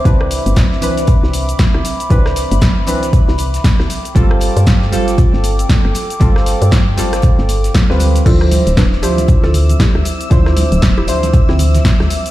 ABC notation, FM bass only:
X:1
M:4/4
L:1/16
Q:"Swing 16ths" 1/4=117
K:Ddor
V:1 name="FM bass" clef=bass
C,,3 G,,,3 C,,3 C,,3 z C,, z2 | C,,3 G,,,3 C,,3 C,,3 z C,, z2 | G,,,3 G,,3 G,,,3 G,,,3 z G,,, z2 | G,,,3 G,,3 G,,,3 G,,,3 z D,,3 |
D,,3 D,,,3 D,,3 D,,3 z D,, z2 | D,,3 D,,,3 D,,3 D,,3 z D,, z2 |]